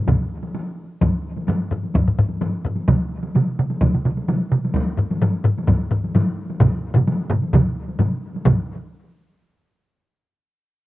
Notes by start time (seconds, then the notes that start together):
0.07 taiko, taiko low-mid, taiko mid, taiko high
0.43 taiko high
0.54 taiko high
1.01 taiko, taiko low-mid, taiko high
1.36 taiko high
1.47 taiko low-mid, taiko high
1.71 taiko low-mid
1.83 taiko high
1.94 taiko, taiko low-mid, taiko high
2.08 taiko low-mid
2.19 taiko low-mid
2.29 taiko high
2.41 taiko low-mid, taiko high
2.65 taiko low-mid
2.76 taiko high
2.88 taiko, taiko mid, taiko high
3.23 taiko high
3.35 taiko mid, taiko high
3.59 taiko mid
3.70 taiko high
3.81 taiko, taiko mid, taiko high
3.95 taiko mid
4.05 taiko mid
4.17 taiko high
4.28 taiko mid, taiko high
4.52 taiko mid
4.64 taiko high
4.74 taiko, taiko high
4.97 taiko low-mid
5.10 taiko high
5.22 taiko low-mid, taiko high
5.44 taiko low-mid
5.58 taiko high
5.68 taiko, taiko low-mid, taiko high
5.91 taiko low-mid
6.04 taiko high
6.15 taiko low-mid, taiko high
6.50 taiko high
6.60 taiko, taiko low-mid, taiko mid, taiko high
6.95 taiko low-mid, taiko mid, taiko high
7.07 taiko high
7.30 taiko low-mid, taiko mid
7.42 taiko high
7.53 taiko, taiko low-mid, taiko mid, taiko high
7.88 taiko high
7.99 taiko low-mid, taiko mid, taiko high
8.35 taiko high
8.45 taiko, taiko low-mid, taiko mid, taiko high